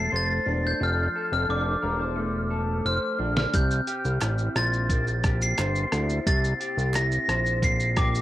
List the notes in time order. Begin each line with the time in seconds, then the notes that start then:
Already playing: F3 A3 D4 A4 C5 C7
0.12 F1 C5 A6
0.46 E1 D4
0.67 G6
0.80 F1 F3 F6
1.16 A4
1.32 F1 F6
1.49 F1 D4 D6
1.82 E1 A#4
1.99 C5
2.16 A3
2.50 A4
2.85 F1 C5 F6
3.19 A#1 D4
3.36 F6, snare
3.52 C2 C3 G6, kick, closed hi-hat, shaker
3.71 shaker
3.87 G4, closed hi-hat, shaker
4.05 C2, shaker
4.21 A1 E4, cross-stick, clap, closed hi-hat, shaker
4.38 shaker
4.56 A#1 C5 A6, cross-stick, closed hi-hat, shaker
4.73 shaker
4.90 A#3, kick, closed hi-hat, shaker
5.07 shaker
5.24 G4, kick, cross-stick, closed hi-hat, shaker
5.41 C7, shaker
5.58 G1 C5, cross-stick, clap, closed hi-hat, shaker
5.75 shaker
5.92 D2 E4, cross-stick, closed hi-hat, shaker
6.09 shaker
6.27 C2 C3 A6, kick, closed hi-hat, shaker
6.44 shaker
6.60 G4, closed hi-hat, shaker
6.77 C2, shaker
6.94 E4 A#6, cross-stick, clap, closed hi-hat, shaker
7.12 shaker
7.28 A#1 C5, cross-stick, closed hi-hat, shaker
7.46 shaker
7.62 A#3 C7, kick, closed hi-hat, shaker
7.80 shaker
7.96 G4 D6, kick, cross-stick, closed hi-hat, shaker
8.15 shaker